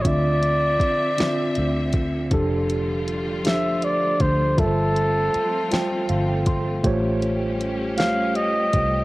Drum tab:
HH |xxxxxx|xxxxxx|xxxxxx|xxxxxx|
SD |---o--|---o--|---o--|---o--|
BD |o-o--o|o----o|o----o|o----o|